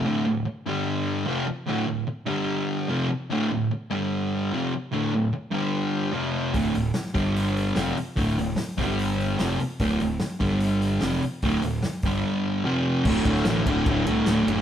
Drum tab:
CC |----------------|----------------|----------------|----------------|
RD |----------------|----------------|----------------|----------------|
HH |----------------|----------------|----------------|----------------|
SD |----------------|----------------|----------------|----------------|
BD |----------------|----------------|----------------|----------------|

CC |----------------|----------------|----------------|----------------|
RD |----------------|----------------|----------------|----------------|
HH |o-o-o-o-o-o-o-o-|o-o-o-o-o-o-o-o-|o-o-o-o-o-o-o-o-|o-o-o-o---------|
SD |----oo------o---|----o-------o---|----o-------o---|----o-----------|
BD |o-----o---------|o-----o---------|o-----o---------|o-----o---------|

CC |x---------------|
RD |--x-x-x-x-x-x-x-|
HH |----------------|
SD |---oo-------o---|
BD |o-o---o-o-------|